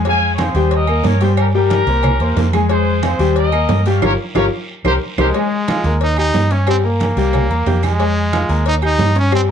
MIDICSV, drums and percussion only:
0, 0, Header, 1, 2, 480
1, 0, Start_track
1, 0, Key_signature, -4, "minor"
1, 0, Tempo, 330943
1, 86, Time_signature, 4, 2, 24, 8
1, 13795, End_track
2, 0, Start_track
2, 0, Title_t, "Drums"
2, 73, Note_on_c, 9, 56, 110
2, 79, Note_on_c, 9, 74, 83
2, 80, Note_on_c, 9, 68, 92
2, 91, Note_on_c, 9, 63, 37
2, 218, Note_off_c, 9, 56, 0
2, 224, Note_off_c, 9, 74, 0
2, 225, Note_off_c, 9, 68, 0
2, 236, Note_off_c, 9, 63, 0
2, 330, Note_on_c, 9, 63, 36
2, 475, Note_off_c, 9, 63, 0
2, 553, Note_on_c, 9, 66, 66
2, 553, Note_on_c, 9, 68, 106
2, 556, Note_on_c, 9, 56, 76
2, 558, Note_on_c, 9, 73, 69
2, 561, Note_on_c, 9, 63, 111
2, 561, Note_on_c, 9, 75, 56
2, 698, Note_off_c, 9, 66, 0
2, 698, Note_off_c, 9, 68, 0
2, 701, Note_off_c, 9, 56, 0
2, 703, Note_off_c, 9, 73, 0
2, 706, Note_off_c, 9, 63, 0
2, 706, Note_off_c, 9, 75, 0
2, 794, Note_on_c, 9, 56, 76
2, 800, Note_on_c, 9, 73, 76
2, 807, Note_on_c, 9, 63, 33
2, 939, Note_off_c, 9, 56, 0
2, 945, Note_off_c, 9, 73, 0
2, 952, Note_off_c, 9, 63, 0
2, 1031, Note_on_c, 9, 56, 105
2, 1032, Note_on_c, 9, 68, 70
2, 1036, Note_on_c, 9, 74, 74
2, 1047, Note_on_c, 9, 63, 36
2, 1176, Note_off_c, 9, 56, 0
2, 1177, Note_off_c, 9, 68, 0
2, 1181, Note_off_c, 9, 74, 0
2, 1192, Note_off_c, 9, 63, 0
2, 1266, Note_on_c, 9, 68, 101
2, 1277, Note_on_c, 9, 75, 68
2, 1284, Note_on_c, 9, 63, 34
2, 1412, Note_off_c, 9, 68, 0
2, 1422, Note_off_c, 9, 75, 0
2, 1429, Note_off_c, 9, 63, 0
2, 1502, Note_on_c, 9, 66, 94
2, 1514, Note_on_c, 9, 56, 84
2, 1519, Note_on_c, 9, 73, 77
2, 1526, Note_on_c, 9, 63, 98
2, 1647, Note_off_c, 9, 66, 0
2, 1659, Note_off_c, 9, 56, 0
2, 1664, Note_off_c, 9, 73, 0
2, 1671, Note_off_c, 9, 63, 0
2, 1750, Note_on_c, 9, 68, 78
2, 1755, Note_on_c, 9, 56, 69
2, 1756, Note_on_c, 9, 73, 82
2, 1760, Note_on_c, 9, 63, 37
2, 1895, Note_off_c, 9, 68, 0
2, 1900, Note_off_c, 9, 56, 0
2, 1901, Note_off_c, 9, 73, 0
2, 1905, Note_off_c, 9, 63, 0
2, 1991, Note_on_c, 9, 68, 114
2, 1991, Note_on_c, 9, 74, 82
2, 1993, Note_on_c, 9, 56, 113
2, 1995, Note_on_c, 9, 75, 76
2, 2004, Note_on_c, 9, 63, 41
2, 2136, Note_off_c, 9, 68, 0
2, 2136, Note_off_c, 9, 74, 0
2, 2138, Note_off_c, 9, 56, 0
2, 2140, Note_off_c, 9, 75, 0
2, 2149, Note_off_c, 9, 63, 0
2, 2242, Note_on_c, 9, 63, 38
2, 2388, Note_off_c, 9, 63, 0
2, 2470, Note_on_c, 9, 66, 69
2, 2470, Note_on_c, 9, 68, 82
2, 2471, Note_on_c, 9, 56, 83
2, 2480, Note_on_c, 9, 73, 71
2, 2481, Note_on_c, 9, 63, 94
2, 2615, Note_off_c, 9, 66, 0
2, 2615, Note_off_c, 9, 68, 0
2, 2617, Note_off_c, 9, 56, 0
2, 2625, Note_off_c, 9, 73, 0
2, 2626, Note_off_c, 9, 63, 0
2, 2713, Note_on_c, 9, 56, 69
2, 2718, Note_on_c, 9, 73, 70
2, 2722, Note_on_c, 9, 63, 37
2, 2858, Note_off_c, 9, 56, 0
2, 2863, Note_off_c, 9, 73, 0
2, 2867, Note_off_c, 9, 63, 0
2, 2941, Note_on_c, 9, 68, 101
2, 2955, Note_on_c, 9, 56, 105
2, 2956, Note_on_c, 9, 74, 73
2, 2958, Note_on_c, 9, 75, 71
2, 2963, Note_on_c, 9, 63, 35
2, 2963, Note_on_c, 9, 64, 88
2, 3086, Note_off_c, 9, 68, 0
2, 3100, Note_off_c, 9, 56, 0
2, 3101, Note_off_c, 9, 74, 0
2, 3103, Note_off_c, 9, 75, 0
2, 3108, Note_off_c, 9, 63, 0
2, 3108, Note_off_c, 9, 64, 0
2, 3191, Note_on_c, 9, 68, 69
2, 3199, Note_on_c, 9, 63, 33
2, 3336, Note_off_c, 9, 68, 0
2, 3344, Note_off_c, 9, 63, 0
2, 3432, Note_on_c, 9, 66, 88
2, 3434, Note_on_c, 9, 56, 87
2, 3435, Note_on_c, 9, 73, 84
2, 3438, Note_on_c, 9, 63, 108
2, 3577, Note_off_c, 9, 66, 0
2, 3579, Note_off_c, 9, 56, 0
2, 3580, Note_off_c, 9, 73, 0
2, 3583, Note_off_c, 9, 63, 0
2, 3672, Note_on_c, 9, 73, 77
2, 3674, Note_on_c, 9, 63, 90
2, 3675, Note_on_c, 9, 75, 75
2, 3676, Note_on_c, 9, 56, 76
2, 3676, Note_on_c, 9, 68, 104
2, 3817, Note_off_c, 9, 73, 0
2, 3819, Note_off_c, 9, 63, 0
2, 3820, Note_off_c, 9, 75, 0
2, 3821, Note_off_c, 9, 56, 0
2, 3821, Note_off_c, 9, 68, 0
2, 3909, Note_on_c, 9, 56, 118
2, 3914, Note_on_c, 9, 74, 76
2, 3915, Note_on_c, 9, 63, 37
2, 3915, Note_on_c, 9, 68, 93
2, 4054, Note_off_c, 9, 56, 0
2, 4059, Note_off_c, 9, 74, 0
2, 4060, Note_off_c, 9, 63, 0
2, 4060, Note_off_c, 9, 68, 0
2, 4160, Note_on_c, 9, 63, 37
2, 4305, Note_off_c, 9, 63, 0
2, 4391, Note_on_c, 9, 56, 77
2, 4393, Note_on_c, 9, 63, 92
2, 4394, Note_on_c, 9, 73, 75
2, 4395, Note_on_c, 9, 66, 63
2, 4395, Note_on_c, 9, 68, 116
2, 4397, Note_on_c, 9, 75, 58
2, 4536, Note_off_c, 9, 56, 0
2, 4538, Note_off_c, 9, 63, 0
2, 4539, Note_off_c, 9, 73, 0
2, 4540, Note_off_c, 9, 66, 0
2, 4540, Note_off_c, 9, 68, 0
2, 4542, Note_off_c, 9, 75, 0
2, 4630, Note_on_c, 9, 73, 77
2, 4634, Note_on_c, 9, 56, 72
2, 4775, Note_off_c, 9, 73, 0
2, 4779, Note_off_c, 9, 56, 0
2, 4872, Note_on_c, 9, 56, 109
2, 4872, Note_on_c, 9, 74, 70
2, 4879, Note_on_c, 9, 68, 69
2, 4885, Note_on_c, 9, 63, 37
2, 5017, Note_off_c, 9, 74, 0
2, 5018, Note_off_c, 9, 56, 0
2, 5024, Note_off_c, 9, 68, 0
2, 5030, Note_off_c, 9, 63, 0
2, 5109, Note_on_c, 9, 68, 113
2, 5120, Note_on_c, 9, 63, 36
2, 5123, Note_on_c, 9, 75, 72
2, 5254, Note_off_c, 9, 68, 0
2, 5265, Note_off_c, 9, 63, 0
2, 5268, Note_off_c, 9, 75, 0
2, 5349, Note_on_c, 9, 66, 98
2, 5351, Note_on_c, 9, 56, 88
2, 5357, Note_on_c, 9, 73, 76
2, 5364, Note_on_c, 9, 63, 98
2, 5494, Note_off_c, 9, 66, 0
2, 5496, Note_off_c, 9, 56, 0
2, 5502, Note_off_c, 9, 73, 0
2, 5509, Note_off_c, 9, 63, 0
2, 5592, Note_on_c, 9, 68, 73
2, 5598, Note_on_c, 9, 56, 74
2, 5598, Note_on_c, 9, 73, 74
2, 5608, Note_on_c, 9, 63, 35
2, 5737, Note_off_c, 9, 68, 0
2, 5743, Note_off_c, 9, 56, 0
2, 5743, Note_off_c, 9, 73, 0
2, 5753, Note_off_c, 9, 63, 0
2, 5832, Note_on_c, 9, 56, 113
2, 5833, Note_on_c, 9, 65, 107
2, 5837, Note_on_c, 9, 75, 115
2, 5839, Note_on_c, 9, 74, 111
2, 5844, Note_on_c, 9, 63, 115
2, 5977, Note_off_c, 9, 56, 0
2, 5978, Note_off_c, 9, 65, 0
2, 5982, Note_off_c, 9, 75, 0
2, 5984, Note_off_c, 9, 74, 0
2, 5989, Note_off_c, 9, 63, 0
2, 6309, Note_on_c, 9, 56, 109
2, 6311, Note_on_c, 9, 74, 98
2, 6316, Note_on_c, 9, 65, 111
2, 6316, Note_on_c, 9, 75, 87
2, 6319, Note_on_c, 9, 63, 112
2, 6454, Note_off_c, 9, 56, 0
2, 6456, Note_off_c, 9, 74, 0
2, 6461, Note_off_c, 9, 65, 0
2, 6461, Note_off_c, 9, 75, 0
2, 6464, Note_off_c, 9, 63, 0
2, 7030, Note_on_c, 9, 56, 104
2, 7033, Note_on_c, 9, 65, 96
2, 7034, Note_on_c, 9, 75, 114
2, 7042, Note_on_c, 9, 74, 103
2, 7045, Note_on_c, 9, 63, 103
2, 7175, Note_off_c, 9, 56, 0
2, 7178, Note_off_c, 9, 65, 0
2, 7179, Note_off_c, 9, 75, 0
2, 7187, Note_off_c, 9, 74, 0
2, 7190, Note_off_c, 9, 63, 0
2, 7514, Note_on_c, 9, 75, 111
2, 7516, Note_on_c, 9, 56, 100
2, 7516, Note_on_c, 9, 65, 97
2, 7518, Note_on_c, 9, 63, 114
2, 7520, Note_on_c, 9, 74, 102
2, 7659, Note_off_c, 9, 75, 0
2, 7661, Note_off_c, 9, 56, 0
2, 7661, Note_off_c, 9, 65, 0
2, 7663, Note_off_c, 9, 63, 0
2, 7665, Note_off_c, 9, 74, 0
2, 7751, Note_on_c, 9, 56, 100
2, 7753, Note_on_c, 9, 68, 95
2, 7757, Note_on_c, 9, 74, 71
2, 7764, Note_on_c, 9, 63, 39
2, 7896, Note_off_c, 9, 56, 0
2, 7898, Note_off_c, 9, 68, 0
2, 7902, Note_off_c, 9, 74, 0
2, 7909, Note_off_c, 9, 63, 0
2, 8009, Note_on_c, 9, 63, 35
2, 8154, Note_off_c, 9, 63, 0
2, 8235, Note_on_c, 9, 73, 68
2, 8237, Note_on_c, 9, 56, 77
2, 8240, Note_on_c, 9, 66, 65
2, 8240, Note_on_c, 9, 68, 111
2, 8242, Note_on_c, 9, 75, 58
2, 8243, Note_on_c, 9, 63, 108
2, 8380, Note_off_c, 9, 73, 0
2, 8382, Note_off_c, 9, 56, 0
2, 8385, Note_off_c, 9, 66, 0
2, 8385, Note_off_c, 9, 68, 0
2, 8387, Note_off_c, 9, 75, 0
2, 8388, Note_off_c, 9, 63, 0
2, 8474, Note_on_c, 9, 56, 71
2, 8476, Note_on_c, 9, 73, 80
2, 8489, Note_on_c, 9, 63, 37
2, 8619, Note_off_c, 9, 56, 0
2, 8621, Note_off_c, 9, 73, 0
2, 8634, Note_off_c, 9, 63, 0
2, 8713, Note_on_c, 9, 56, 103
2, 8716, Note_on_c, 9, 68, 67
2, 8724, Note_on_c, 9, 74, 78
2, 8735, Note_on_c, 9, 63, 38
2, 8858, Note_off_c, 9, 56, 0
2, 8861, Note_off_c, 9, 68, 0
2, 8869, Note_off_c, 9, 74, 0
2, 8880, Note_off_c, 9, 63, 0
2, 8949, Note_on_c, 9, 68, 93
2, 8959, Note_on_c, 9, 75, 70
2, 8975, Note_on_c, 9, 63, 37
2, 9094, Note_off_c, 9, 68, 0
2, 9104, Note_off_c, 9, 75, 0
2, 9120, Note_off_c, 9, 63, 0
2, 9195, Note_on_c, 9, 56, 88
2, 9198, Note_on_c, 9, 73, 80
2, 9199, Note_on_c, 9, 66, 89
2, 9210, Note_on_c, 9, 63, 89
2, 9340, Note_off_c, 9, 56, 0
2, 9343, Note_off_c, 9, 73, 0
2, 9344, Note_off_c, 9, 66, 0
2, 9356, Note_off_c, 9, 63, 0
2, 9435, Note_on_c, 9, 68, 73
2, 9437, Note_on_c, 9, 56, 73
2, 9437, Note_on_c, 9, 73, 75
2, 9580, Note_off_c, 9, 68, 0
2, 9583, Note_off_c, 9, 56, 0
2, 9583, Note_off_c, 9, 73, 0
2, 9671, Note_on_c, 9, 68, 116
2, 9679, Note_on_c, 9, 75, 73
2, 9681, Note_on_c, 9, 56, 114
2, 9683, Note_on_c, 9, 74, 78
2, 9689, Note_on_c, 9, 63, 41
2, 9816, Note_off_c, 9, 68, 0
2, 9824, Note_off_c, 9, 75, 0
2, 9826, Note_off_c, 9, 56, 0
2, 9828, Note_off_c, 9, 74, 0
2, 9834, Note_off_c, 9, 63, 0
2, 9929, Note_on_c, 9, 63, 36
2, 10074, Note_off_c, 9, 63, 0
2, 10156, Note_on_c, 9, 56, 72
2, 10162, Note_on_c, 9, 66, 67
2, 10162, Note_on_c, 9, 68, 94
2, 10166, Note_on_c, 9, 63, 104
2, 10168, Note_on_c, 9, 73, 66
2, 10301, Note_off_c, 9, 56, 0
2, 10307, Note_off_c, 9, 66, 0
2, 10307, Note_off_c, 9, 68, 0
2, 10311, Note_off_c, 9, 63, 0
2, 10313, Note_off_c, 9, 73, 0
2, 10398, Note_on_c, 9, 56, 75
2, 10402, Note_on_c, 9, 73, 78
2, 10543, Note_off_c, 9, 56, 0
2, 10547, Note_off_c, 9, 73, 0
2, 10634, Note_on_c, 9, 56, 98
2, 10634, Note_on_c, 9, 75, 69
2, 10637, Note_on_c, 9, 74, 73
2, 10644, Note_on_c, 9, 68, 100
2, 10661, Note_on_c, 9, 63, 36
2, 10661, Note_on_c, 9, 64, 86
2, 10779, Note_off_c, 9, 56, 0
2, 10780, Note_off_c, 9, 75, 0
2, 10782, Note_off_c, 9, 74, 0
2, 10789, Note_off_c, 9, 68, 0
2, 10806, Note_off_c, 9, 63, 0
2, 10806, Note_off_c, 9, 64, 0
2, 10888, Note_on_c, 9, 68, 73
2, 10890, Note_on_c, 9, 63, 33
2, 11033, Note_off_c, 9, 68, 0
2, 11035, Note_off_c, 9, 63, 0
2, 11114, Note_on_c, 9, 73, 76
2, 11117, Note_on_c, 9, 56, 85
2, 11124, Note_on_c, 9, 66, 86
2, 11129, Note_on_c, 9, 63, 92
2, 11259, Note_off_c, 9, 73, 0
2, 11262, Note_off_c, 9, 56, 0
2, 11269, Note_off_c, 9, 66, 0
2, 11274, Note_off_c, 9, 63, 0
2, 11351, Note_on_c, 9, 73, 77
2, 11357, Note_on_c, 9, 56, 77
2, 11360, Note_on_c, 9, 75, 73
2, 11366, Note_on_c, 9, 68, 105
2, 11370, Note_on_c, 9, 63, 93
2, 11496, Note_off_c, 9, 73, 0
2, 11502, Note_off_c, 9, 56, 0
2, 11505, Note_off_c, 9, 75, 0
2, 11511, Note_off_c, 9, 68, 0
2, 11515, Note_off_c, 9, 63, 0
2, 11598, Note_on_c, 9, 68, 84
2, 11601, Note_on_c, 9, 56, 113
2, 11609, Note_on_c, 9, 63, 38
2, 11743, Note_off_c, 9, 68, 0
2, 11746, Note_off_c, 9, 56, 0
2, 11754, Note_off_c, 9, 63, 0
2, 11853, Note_on_c, 9, 63, 37
2, 11998, Note_off_c, 9, 63, 0
2, 12077, Note_on_c, 9, 73, 76
2, 12081, Note_on_c, 9, 75, 60
2, 12083, Note_on_c, 9, 66, 59
2, 12083, Note_on_c, 9, 68, 106
2, 12085, Note_on_c, 9, 56, 71
2, 12086, Note_on_c, 9, 63, 103
2, 12222, Note_off_c, 9, 73, 0
2, 12226, Note_off_c, 9, 75, 0
2, 12228, Note_off_c, 9, 66, 0
2, 12228, Note_off_c, 9, 68, 0
2, 12230, Note_off_c, 9, 56, 0
2, 12231, Note_off_c, 9, 63, 0
2, 12314, Note_on_c, 9, 73, 70
2, 12323, Note_on_c, 9, 56, 75
2, 12333, Note_on_c, 9, 63, 36
2, 12459, Note_off_c, 9, 73, 0
2, 12468, Note_off_c, 9, 56, 0
2, 12478, Note_off_c, 9, 63, 0
2, 12554, Note_on_c, 9, 74, 72
2, 12555, Note_on_c, 9, 68, 71
2, 12561, Note_on_c, 9, 56, 113
2, 12574, Note_on_c, 9, 63, 38
2, 12699, Note_off_c, 9, 74, 0
2, 12700, Note_off_c, 9, 68, 0
2, 12706, Note_off_c, 9, 56, 0
2, 12719, Note_off_c, 9, 63, 0
2, 12793, Note_on_c, 9, 68, 98
2, 12802, Note_on_c, 9, 75, 68
2, 12811, Note_on_c, 9, 63, 35
2, 12938, Note_off_c, 9, 68, 0
2, 12947, Note_off_c, 9, 75, 0
2, 12956, Note_off_c, 9, 63, 0
2, 13040, Note_on_c, 9, 66, 89
2, 13041, Note_on_c, 9, 56, 81
2, 13041, Note_on_c, 9, 73, 84
2, 13047, Note_on_c, 9, 63, 98
2, 13185, Note_off_c, 9, 66, 0
2, 13186, Note_off_c, 9, 56, 0
2, 13186, Note_off_c, 9, 73, 0
2, 13192, Note_off_c, 9, 63, 0
2, 13278, Note_on_c, 9, 56, 68
2, 13281, Note_on_c, 9, 68, 72
2, 13286, Note_on_c, 9, 73, 71
2, 13423, Note_off_c, 9, 56, 0
2, 13426, Note_off_c, 9, 68, 0
2, 13431, Note_off_c, 9, 73, 0
2, 13516, Note_on_c, 9, 68, 113
2, 13520, Note_on_c, 9, 56, 109
2, 13520, Note_on_c, 9, 75, 79
2, 13661, Note_off_c, 9, 68, 0
2, 13665, Note_off_c, 9, 56, 0
2, 13665, Note_off_c, 9, 75, 0
2, 13795, End_track
0, 0, End_of_file